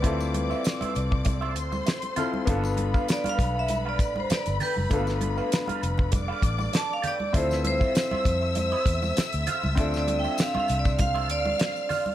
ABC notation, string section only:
X:1
M:4/4
L:1/8
Q:"Swing 16ths" 1/4=99
K:Ddor
V:1 name="String section"
[dd']4- [dd'] [cc']3 | [Bb]8- | [Bb]4 [dd']4 | [ee']8- |
[ee']4 [ff']4 |]